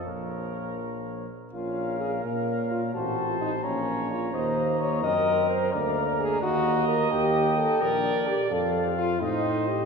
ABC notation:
X:1
M:6/8
L:1/16
Q:3/8=86
K:Bbm
V:1 name="Cornet"
d8- d2 z2 | f6 f6 | =a6 b6- | b12 |
b6 b6 | [K:Eblyd] g8- g2 z2 | f6 e6 |]
V:2 name="Trumpet"
B8- B2 z2 | B12 | c6 d6 | e6 B6 |
B6 e6- | [K:Eblyd] e6 d6- | d4 z2 c6 |]
V:3 name="French horn"
B,8- B,2 z2 | F4 A2 B4 F2 | ^F3 =F E2 D4 F2 | c4 d2 e4 c2 |
=d3 B A2 G4 B2 | [K:Eblyd] G4 A2 B4 G2 | A3 G F2 E4 G2 |]
V:4 name="Trombone"
F,8- F,2 z2 | D6 D6 | C6 B,6 | B,6 C6 |
B,6 B,6- | [K:Eblyd] B,6 D4 z2 | C6 C6 |]
V:5 name="Tuba" clef=bass
B,,,8- B,,,2 z2 | B,,,6 B,,6 | =A,,,6 B,,,6 | E,,6 G,,6 |
=D,,6 E,,6 | [K:Eblyd] E,,6 B,,,4 z2 | F,,6 A,,6 |]